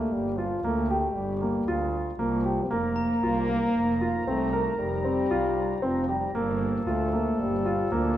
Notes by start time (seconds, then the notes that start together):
Already playing: A3 A#3
0.12 G1 G3
0.37 F3 F4
0.63 D2 A3 A#3
0.90 G4
1.15 G1 G3
1.42 A#3
1.67 D2 F4
2.18 C2 F3 A#3
2.45 G4
2.64 C4
2.71 F1 F3 A#3 D#4 A#5
2.96 A#5
3.23 C2 F4
3.49 A#3
3.75 F1
4.01 F4
4.27 C2 A3 C4
4.53 A#4
4.79 F1 G3
5.05 C4
5.31 C2 F4
5.82 F1 F3 C4
6.09 G3 G4
6.34 G1 A#2 A#3 A4
6.86 D2 A3 F4
7.13 A#3
7.39 G1 G3
7.66 F4
7.92 D2 F3 A#3